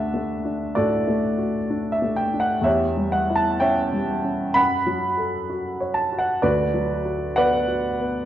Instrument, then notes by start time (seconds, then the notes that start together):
upright piano
Already playing: D2 A3 D4 F#4 A4 D5 E5 F#5
0.14 A3
0.45 D4
0.75 A2 F#4 A4 D5
1.08 A3
1.38 F#4
1.70 D4
1.92 E5
2.02 A3
2.16 G5
2.34 D4
2.40 F#5
2.61 E2 G4 C#5 E5
2.97 G3
3.12 F#5
3.30 E4
3.35 A5
3.60 C#4 C#5 E5 G5
3.93 G3
4.24 C#4
4.54 F#2 F#5 B5
4.86 F#3
5.17 A4
5.50 F#4
5.80 C#5
5.94 A5
6.12 F#4
6.19 F#5
6.42 D2 F#4 B4 D5
6.74 F#3
7.05 F#4
7.36 B3 B4 D5 F#5
7.68 F#4
8.00 B3